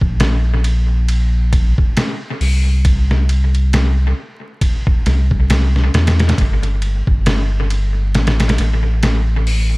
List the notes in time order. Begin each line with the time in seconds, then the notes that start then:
0.01 A#1, kick
0.20 snare, ride
0.64 ride
1.08 ride
1.53 kick, ride
1.78 kick
1.97 snare, ride
2.41 C2, open hi-hat
2.85 kick, ride
3.11 snare
3.29 ride
3.55 ride
3.73 snare, ride
4.61 kick, ride
4.87 kick
5.06 C2, snare, ride
5.31 kick
5.50 snare, ride
5.76 snare
5.94 E2, snare, ride
6.07 snare, ride
6.20 snare, ride
6.29 snare, ride
6.38 G1, kick, ride
6.63 ride
6.82 ride
7.07 G1, kick
7.26 snare, ride
7.70 ride
8.15 A1, snare, ride
8.27 snare, ride
8.40 snare, ride
8.49 snare, ride
8.58 A1, ride
9.03 snare, ride
9.47 open hi-hat